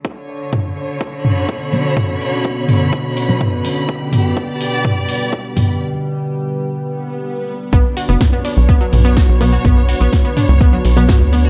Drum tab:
HH |-o-o-o-o|-o-o-o-o|-o-o-o-o|--------|
SD |--------|--------|--------|--------|
T2 |--o--o--|o--o--o-|-o--o--o|--------|
BD |o-o-o-o-|o-o-o-o-|o-o-o-o-|--------|

HH |-o-o-o-o|-o-o-o-o|
SD |--o---o-|--o---o-|
T2 |--o--o--|o--o--o-|
BD |o-o-o-o-|o-o-o-o-|